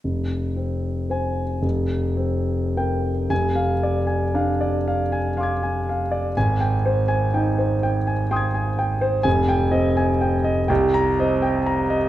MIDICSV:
0, 0, Header, 1, 2, 480
1, 0, Start_track
1, 0, Tempo, 1071429
1, 18, Time_signature, 6, 3, 24, 8
1, 978, Tempo, 1121495
1, 1458, Tempo, 1036269
1, 2418, Tempo, 977199
1, 3858, Tempo, 960000
1, 5748, End_track
2, 0, Start_track
2, 0, Title_t, "Grand piano"
2, 0, Program_c, 0, 0
2, 19, Note_on_c, 0, 29, 35
2, 99, Control_c, 0, 64, 127
2, 252, Note_on_c, 0, 60, 32
2, 492, Note_on_c, 0, 72, 32
2, 497, Note_on_c, 0, 80, 45
2, 634, Note_off_c, 0, 60, 0
2, 713, Note_off_c, 0, 72, 0
2, 715, Note_off_c, 0, 29, 0
2, 716, Note_off_c, 0, 80, 0
2, 724, Note_on_c, 0, 29, 46
2, 741, Control_c, 0, 64, 0
2, 826, Control_c, 0, 64, 127
2, 972, Note_on_c, 0, 60, 42
2, 1229, Note_on_c, 0, 70, 36
2, 1231, Note_on_c, 0, 79, 53
2, 1365, Note_off_c, 0, 60, 0
2, 1438, Note_off_c, 0, 29, 0
2, 1444, Note_off_c, 0, 70, 0
2, 1445, Note_off_c, 0, 79, 0
2, 1455, Note_on_c, 0, 29, 41
2, 1457, Note_on_c, 0, 80, 54
2, 1466, Control_c, 0, 64, 0
2, 1534, Control_c, 0, 64, 127
2, 1574, Note_on_c, 0, 77, 40
2, 1649, Note_off_c, 0, 80, 0
2, 1703, Note_on_c, 0, 74, 37
2, 1768, Note_off_c, 0, 77, 0
2, 1812, Note_on_c, 0, 80, 39
2, 1893, Note_off_c, 0, 74, 0
2, 1941, Note_on_c, 0, 62, 36
2, 1942, Note_on_c, 0, 77, 39
2, 2008, Note_off_c, 0, 80, 0
2, 2062, Note_on_c, 0, 74, 36
2, 2133, Note_off_c, 0, 77, 0
2, 2186, Note_on_c, 0, 77, 37
2, 2253, Note_off_c, 0, 74, 0
2, 2300, Note_on_c, 0, 80, 40
2, 2325, Note_off_c, 0, 62, 0
2, 2374, Note_off_c, 0, 77, 0
2, 2415, Note_on_c, 0, 77, 39
2, 2418, Note_on_c, 0, 84, 31
2, 2432, Note_on_c, 0, 86, 27
2, 2444, Note_on_c, 0, 92, 30
2, 2494, Note_off_c, 0, 80, 0
2, 2542, Note_on_c, 0, 80, 40
2, 2613, Note_off_c, 0, 77, 0
2, 2671, Note_on_c, 0, 77, 38
2, 2735, Note_off_c, 0, 80, 0
2, 2780, Note_on_c, 0, 74, 40
2, 2857, Note_off_c, 0, 77, 0
2, 2878, Note_off_c, 0, 29, 0
2, 2881, Note_off_c, 0, 84, 0
2, 2888, Note_off_c, 0, 86, 0
2, 2893, Note_off_c, 0, 92, 0
2, 2899, Note_off_c, 0, 74, 0
2, 2906, Note_on_c, 0, 32, 48
2, 2906, Note_on_c, 0, 80, 57
2, 2907, Control_c, 0, 64, 0
2, 2989, Control_c, 0, 64, 127
2, 3021, Note_on_c, 0, 79, 40
2, 3094, Note_off_c, 0, 80, 0
2, 3144, Note_on_c, 0, 72, 45
2, 3213, Note_off_c, 0, 79, 0
2, 3255, Note_on_c, 0, 80, 47
2, 3336, Note_off_c, 0, 72, 0
2, 3383, Note_on_c, 0, 79, 43
2, 3384, Note_on_c, 0, 63, 37
2, 3452, Note_off_c, 0, 80, 0
2, 3502, Note_on_c, 0, 72, 36
2, 3575, Note_off_c, 0, 79, 0
2, 3624, Note_on_c, 0, 79, 49
2, 3693, Note_off_c, 0, 72, 0
2, 3742, Note_on_c, 0, 80, 43
2, 3765, Note_off_c, 0, 63, 0
2, 3812, Note_off_c, 0, 79, 0
2, 3859, Note_on_c, 0, 79, 47
2, 3859, Note_on_c, 0, 84, 34
2, 3866, Note_on_c, 0, 87, 35
2, 3886, Note_on_c, 0, 92, 34
2, 3930, Note_off_c, 0, 80, 0
2, 3976, Note_on_c, 0, 80, 47
2, 4049, Note_off_c, 0, 79, 0
2, 4097, Note_on_c, 0, 79, 48
2, 4166, Note_off_c, 0, 80, 0
2, 4210, Note_on_c, 0, 72, 49
2, 4286, Note_off_c, 0, 79, 0
2, 4313, Note_off_c, 0, 84, 0
2, 4315, Note_off_c, 0, 32, 0
2, 4317, Note_off_c, 0, 87, 0
2, 4320, Note_on_c, 0, 80, 64
2, 4325, Note_on_c, 0, 29, 55
2, 4327, Note_off_c, 0, 92, 0
2, 4331, Note_off_c, 0, 72, 0
2, 4340, Control_c, 0, 64, 0
2, 4406, Control_c, 0, 64, 127
2, 4447, Note_on_c, 0, 79, 53
2, 4516, Note_off_c, 0, 80, 0
2, 4560, Note_on_c, 0, 60, 43
2, 4561, Note_on_c, 0, 75, 50
2, 4638, Note_off_c, 0, 79, 0
2, 4687, Note_on_c, 0, 80, 51
2, 4757, Note_off_c, 0, 75, 0
2, 4810, Note_on_c, 0, 79, 44
2, 4881, Note_off_c, 0, 80, 0
2, 4925, Note_on_c, 0, 75, 49
2, 4950, Note_off_c, 0, 60, 0
2, 5004, Note_off_c, 0, 79, 0
2, 5029, Note_off_c, 0, 29, 0
2, 5045, Note_on_c, 0, 79, 49
2, 5050, Note_off_c, 0, 75, 0
2, 5051, Note_on_c, 0, 36, 61
2, 5061, Control_c, 0, 64, 0
2, 5136, Control_c, 0, 64, 127
2, 5174, Note_on_c, 0, 82, 63
2, 5245, Note_off_c, 0, 79, 0
2, 5300, Note_on_c, 0, 60, 42
2, 5303, Note_on_c, 0, 75, 51
2, 5370, Note_off_c, 0, 82, 0
2, 5415, Note_on_c, 0, 79, 48
2, 5495, Note_off_c, 0, 75, 0
2, 5536, Note_on_c, 0, 82, 53
2, 5610, Note_off_c, 0, 79, 0
2, 5653, Note_on_c, 0, 75, 51
2, 5684, Note_off_c, 0, 60, 0
2, 5728, Note_off_c, 0, 82, 0
2, 5748, Note_off_c, 0, 36, 0
2, 5748, Note_off_c, 0, 75, 0
2, 5748, End_track
0, 0, End_of_file